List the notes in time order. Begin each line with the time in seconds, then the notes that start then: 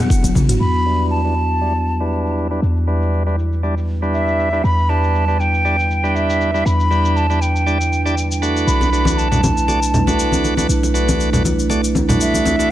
Already playing: F#5
0.10 kick, shaker
0.23 F#1, closed hi-hat, high tom, high conga, shaker
0.35 A1, mid tom, muted conga, high conga, shaker
0.49 F#1 F#4, closed hi-hat, mid tom, shaker
0.60 E2 G3 D4 E4 B4 B5
0.75 shaker
0.86 G3 D4 E4 B4
1.00 shaker
1.11 A5
1.25 G3 D4 E4 B4
1.37 shaker
1.51 shaker
1.61 G3 D4 E4 D5, shaker
1.76 shaker
1.87 shaker
2.00 G3 D4 E4 B4, shaker
2.12 shaker
2.26 shaker
2.38 shaker
2.51 G3 D4 E4 B4, shaker
2.62 E2, shaker
2.77 shaker
2.87 G3 D4 E4 B4, shaker
3.02 shaker
3.13 shaker
3.26 G3 D4 E4 B4, shaker
3.39 shaker
3.53 shaker
3.63 G3 D4 E4 D5, shaker
3.78 shaker
3.89 shaker
4.02 G3 D4 E4 B4, shaker
4.13 E5, shaker
4.28 shaker
4.40 shaker
4.53 G3 D4 E4 B4, shaker
4.64 E2 E4 B5, shaker
4.79 shaker
4.89 G3 D4 E4 B4 A5, shaker
5.04 shaker
5.15 shaker
5.28 G3 D4 E4 B4, shaker
5.40 G5, shaker
5.54 shaker
5.65 G3 D4 E4 D5, shaker
5.79 shaker
5.91 shaker
6.04 G3 D4 E4 B4, shaker
6.09 G5
6.15 E5, shaker
6.30 shaker
6.41 shaker
6.54 G3 D4 E4 B4, shaker
6.66 E2 B5, shaker
6.80 shaker
6.91 G3 D4 E4 B4, shaker
7.05 shaker
7.16 A5, shaker
7.30 G3 D4 E4 B4, shaker
7.41 G5, shaker
7.56 shaker
7.66 G3 D4 E4 D5, shaker
7.81 shaker
7.93 shaker
8.06 G3 D4 E4 D5, shaker
8.18 shaker
8.31 shaker
8.42 A3 D4 F#4 B4, shaker
8.57 shaker
8.67 B1 A3 B4 B5, shaker
8.81 muted conga, high conga, shaker
8.92 A3 D4 F#4 B4, shaker
9.05 high conga, shaker
9.18 A5, shaker
9.31 A3 D4 F#4 B4, muted conga, low conga, shaker
9.43 high conga, low conga, shaker
9.57 shaker
9.68 A3 D4 F#4 D5, muted conga, shaker
9.83 shaker
9.94 low conga, shaker
10.07 A3 D4 F#4 B4, muted conga, high conga, shaker
10.19 shaker
10.32 high conga, shaker
10.44 muted conga, shaker
10.57 A3 D4 F#4 B4, high conga, shaker
10.69 B1, shaker
10.83 muted conga, shaker
10.94 A3 D4 F#4 B4, shaker
11.09 high conga, shaker
11.20 shaker
11.33 A3 D4 F#4 B4, muted conga, low conga, shaker
11.45 high conga, shaker
11.59 shaker
11.70 A3 D4 F#4 D5, muted conga, shaker
11.84 shaker
11.95 high conga, shaker
12.09 A3 D4 F#4 B4, muted conga, low conga, shaker
12.20 E5, shaker
12.34 high conga, shaker
12.46 muted conga, high conga, shaker
12.59 A3 D4 F#4 B4, shaker